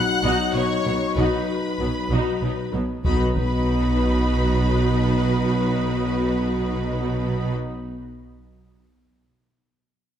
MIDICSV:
0, 0, Header, 1, 9, 480
1, 0, Start_track
1, 0, Key_signature, 5, "major"
1, 0, Tempo, 626959
1, 890, Time_signature, 3, 2, 24, 8
1, 2334, Tempo, 618557
1, 7880, End_track
2, 0, Start_track
2, 0, Title_t, "Violin section"
2, 0, Program_c, 0, 48
2, 0, Note_on_c, 0, 90, 71
2, 413, Note_off_c, 0, 90, 0
2, 416, Note_on_c, 0, 85, 64
2, 883, Note_off_c, 0, 85, 0
2, 898, Note_on_c, 0, 83, 50
2, 2097, Note_off_c, 0, 83, 0
2, 2338, Note_on_c, 0, 83, 48
2, 2477, Note_off_c, 0, 83, 0
2, 2580, Note_on_c, 0, 83, 55
2, 5807, Note_off_c, 0, 83, 0
2, 7880, End_track
3, 0, Start_track
3, 0, Title_t, "Violin section"
3, 0, Program_c, 1, 48
3, 0, Note_on_c, 1, 78, 61
3, 411, Note_off_c, 1, 78, 0
3, 416, Note_on_c, 1, 73, 61
3, 890, Note_on_c, 1, 71, 42
3, 893, Note_off_c, 1, 73, 0
3, 2070, Note_off_c, 1, 71, 0
3, 2330, Note_on_c, 1, 71, 40
3, 2473, Note_off_c, 1, 71, 0
3, 2563, Note_on_c, 1, 71, 52
3, 5799, Note_off_c, 1, 71, 0
3, 7880, End_track
4, 0, Start_track
4, 0, Title_t, "Viola section"
4, 0, Program_c, 2, 48
4, 184, Note_on_c, 2, 63, 49
4, 184, Note_on_c, 2, 66, 53
4, 400, Note_off_c, 2, 63, 0
4, 400, Note_off_c, 2, 66, 0
4, 424, Note_on_c, 2, 59, 40
4, 428, Note_on_c, 2, 63, 41
4, 485, Note_off_c, 2, 59, 0
4, 489, Note_off_c, 2, 63, 0
4, 656, Note_on_c, 2, 59, 38
4, 659, Note_on_c, 2, 54, 36
4, 717, Note_off_c, 2, 59, 0
4, 720, Note_off_c, 2, 54, 0
4, 898, Note_on_c, 2, 63, 40
4, 902, Note_on_c, 2, 66, 50
4, 1118, Note_off_c, 2, 63, 0
4, 1121, Note_off_c, 2, 66, 0
4, 1381, Note_on_c, 2, 59, 32
4, 1383, Note_on_c, 2, 54, 36
4, 1442, Note_off_c, 2, 59, 0
4, 1444, Note_off_c, 2, 54, 0
4, 1620, Note_on_c, 2, 66, 43
4, 1621, Note_on_c, 2, 63, 44
4, 1840, Note_off_c, 2, 63, 0
4, 1840, Note_off_c, 2, 66, 0
4, 1863, Note_on_c, 2, 59, 31
4, 1868, Note_on_c, 2, 63, 34
4, 1925, Note_off_c, 2, 59, 0
4, 1929, Note_off_c, 2, 63, 0
4, 2087, Note_on_c, 2, 54, 37
4, 2091, Note_on_c, 2, 59, 36
4, 2148, Note_off_c, 2, 54, 0
4, 2152, Note_off_c, 2, 59, 0
4, 2336, Note_on_c, 2, 66, 39
4, 2338, Note_on_c, 2, 63, 39
4, 2476, Note_off_c, 2, 66, 0
4, 2477, Note_off_c, 2, 63, 0
4, 2571, Note_on_c, 2, 63, 42
4, 2574, Note_on_c, 2, 66, 42
4, 5803, Note_off_c, 2, 63, 0
4, 5804, Note_off_c, 2, 66, 0
4, 7880, End_track
5, 0, Start_track
5, 0, Title_t, "French horn section"
5, 0, Program_c, 3, 60
5, 0, Note_on_c, 3, 54, 49
5, 0, Note_on_c, 3, 63, 53
5, 2062, Note_off_c, 3, 54, 0
5, 2063, Note_off_c, 3, 63, 0
5, 2329, Note_on_c, 3, 63, 42
5, 2334, Note_on_c, 3, 54, 39
5, 5802, Note_off_c, 3, 63, 0
5, 5805, Note_off_c, 3, 54, 0
5, 7880, End_track
6, 0, Start_track
6, 0, Title_t, "Cello section"
6, 0, Program_c, 4, 48
6, 176, Note_on_c, 4, 47, 52
6, 237, Note_off_c, 4, 47, 0
6, 413, Note_on_c, 4, 47, 39
6, 475, Note_off_c, 4, 47, 0
6, 645, Note_on_c, 4, 47, 39
6, 707, Note_off_c, 4, 47, 0
6, 891, Note_on_c, 4, 47, 49
6, 952, Note_off_c, 4, 47, 0
6, 1376, Note_on_c, 4, 47, 32
6, 1437, Note_off_c, 4, 47, 0
6, 1615, Note_on_c, 4, 47, 43
6, 1676, Note_off_c, 4, 47, 0
6, 1852, Note_on_c, 4, 47, 34
6, 1914, Note_off_c, 4, 47, 0
6, 2101, Note_on_c, 4, 47, 35
6, 2163, Note_off_c, 4, 47, 0
6, 2336, Note_on_c, 4, 47, 41
6, 2476, Note_off_c, 4, 47, 0
6, 2576, Note_on_c, 4, 47, 46
6, 5805, Note_off_c, 4, 47, 0
6, 7880, End_track
7, 0, Start_track
7, 0, Title_t, "Timpani"
7, 0, Program_c, 5, 47
7, 2327, Note_on_c, 5, 47, 33
7, 2464, Note_off_c, 5, 47, 0
7, 2567, Note_on_c, 5, 47, 34
7, 6097, Note_off_c, 5, 47, 0
7, 7880, End_track
8, 0, Start_track
8, 0, Title_t, "Double bass section"
8, 0, Program_c, 6, 48
8, 178, Note_on_c, 6, 35, 55
8, 239, Note_off_c, 6, 35, 0
8, 415, Note_on_c, 6, 35, 36
8, 477, Note_off_c, 6, 35, 0
8, 656, Note_on_c, 6, 35, 38
8, 717, Note_off_c, 6, 35, 0
8, 894, Note_on_c, 6, 35, 54
8, 955, Note_off_c, 6, 35, 0
8, 1375, Note_on_c, 6, 35, 34
8, 1436, Note_off_c, 6, 35, 0
8, 1609, Note_on_c, 6, 35, 50
8, 1670, Note_off_c, 6, 35, 0
8, 1850, Note_on_c, 6, 35, 31
8, 1912, Note_off_c, 6, 35, 0
8, 2093, Note_on_c, 6, 35, 34
8, 2154, Note_off_c, 6, 35, 0
8, 2333, Note_on_c, 6, 35, 44
8, 2474, Note_off_c, 6, 35, 0
8, 2569, Note_on_c, 6, 35, 47
8, 5802, Note_off_c, 6, 35, 0
8, 7880, End_track
9, 0, Start_track
9, 0, Title_t, "Taiko and cinematic ensemble drums"
9, 2331, Note_on_c, 9, 41, 42
9, 2409, Note_off_c, 9, 41, 0
9, 2575, Note_on_c, 9, 41, 36
9, 2653, Note_off_c, 9, 41, 0
9, 7880, End_track
0, 0, End_of_file